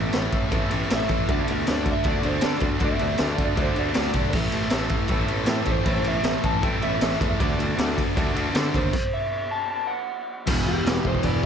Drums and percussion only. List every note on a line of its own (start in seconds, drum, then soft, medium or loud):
0.12 snare loud
0.12 ride medium
0.32 kick medium
0.32 ride medium
0.52 kick loud
0.52 ride loud
0.71 ride medium
0.90 snare loud
0.90 ride loud
1.09 kick medium
1.09 ride medium
1.28 kick loud
1.28 ride loud
1.48 ride medium
1.67 snare loud
1.67 ride loud
1.86 kick medium
1.86 ride medium
2.04 kick loud
2.04 ride loud
2.23 ride medium
2.41 snare loud
2.41 ride loud
2.60 kick medium
2.60 ride medium
2.80 kick loud
2.80 ride loud
2.99 ride medium
3.18 snare loud
3.18 ride medium
3.38 kick medium
3.38 ride medium
3.57 kick loud
3.57 ride loud
3.76 ride medium
3.94 snare loud
3.94 ride loud
4.13 kick medium
4.13 ride medium
4.33 kick loud
4.33 crash loud
4.52 ride medium
4.70 snare loud
4.70 ride loud
4.89 kick medium
4.89 ride medium
5.08 kick loud
5.08 ride loud
5.28 ride medium
5.46 snare loud
5.46 ride loud
5.65 kick medium
5.65 ride medium
5.86 kick loud
5.86 ride loud
6.04 ride medium
6.24 snare loud
6.24 ride medium
6.43 kick medium
6.43 ride medium
6.63 kick loud
6.63 ride loud
6.82 ride medium
7.01 snare loud
7.01 ride loud
7.21 kick medium
7.21 ride medium
7.40 kick loud
7.40 ride loud
7.60 ride medium
7.78 snare loud
7.78 ride loud
7.98 kick medium
7.98 ride medium
8.17 kick loud
8.17 ride loud
8.36 ride medium
8.55 snare loud
8.55 ride loud
8.74 kick medium
8.74 ride medium
8.93 kick loud
8.93 crash loud
10.47 kick loud
10.47 crash loud
10.47 crash medium
10.86 snare loud
10.86 crash medium
11.05 kick medium
11.15 kick medium
11.23 kick loud
11.23 crash medium